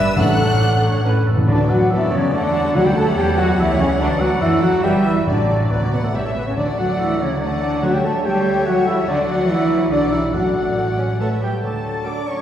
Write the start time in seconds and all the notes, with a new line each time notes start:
Already playing: G1 G2 G3 D4 B4 E5 E6
0.16 A1 A2 F#3 D4 A4 F#5 F#6
0.61 D5
0.84 C#5
1.05 A1 A2 E3 C#4 A4 B4
1.13 A2
1.21 A2
1.27 A2 A4
1.36 A2
1.48 D2 D3 F#3 D4 B4 D5
1.69 F#3 F#4 F#5
1.90 F#2 E3 B3 E4 A4 D5 E5
2.11 C#3 C#4 C#5
2.32 E2 D3 A3 D4 A4 D5 F#5
2.55 G3
2.75 D2 D3 F#3 G3 F#4 A4 C#5 F#5
2.85 G3 G4 G5
2.95 A3 A4 A5
3.17 E2 E3 G3 G4 G5
3.36 F#3 F#4 F#5
3.58 C#2 E3 A3 E4 C#5 E5
3.79 C#3 C#4 C#5
3.99 D2 D3 F#3 D4 B4 D5
4.20 F#3 F#4 F#5
4.40 F#2 E3 E4 A4 E5
4.62 F#3 F#4 F#5
4.82 G1 G3 G4 B4 E5 G5
5.04 E3 E4 E5
5.26 A1 A2 D3 F#3 D4 D5
5.70 D2 B2 B3 B4 D5
5.81 C#3 C#4 C#5
5.92 B2 B3 B4 F#5
6.03 A2 A3 A4
6.13 A1 G2 E3 G3 G4 C#5 E5
6.25 A2 A3 A4
6.35 B2 B3 B4
6.46 C#3 C#4 C#5
6.56 D2 D3 F#3 A3 D4 D5 F#5
6.78 F#3 F#4 F#5
6.99 E3 E4 E5
7.20 C#3 C#4 C#5
7.41 D3 F#3 A3 D4 D5 F#5
7.83 D3 F#3 A3 F#4 C#5 E5 F#5
7.94 G3 G4 G5
8.04 A3 A4 A5
8.24 G3 A3 G4 C#5 E5 G5
8.66 F#3 G3 F#4 F#5
8.87 E3 E4 E5
9.08 D2 D3 F#3 D4 D5 F#5
9.28 F#3 F#4 F#5
9.49 E3 E4 E5
9.91 B1 D3 F#3 D4 D5 F#5
10.11 E3 G3 E4 E5
10.33 A1 A2 F#3 A3 F#4 D5 F#5
10.77 G3 A3
10.99 C#4
11.19 A3 B3 A4 C#5 E5 A5
11.41 G3 G4 G5
11.62 D2 D3 F#3 A3 D4 A4 D5 A5
12.05 F#3 A3 D4 F#4 A4 D5 D6
12.27 C#4 C#5 C#6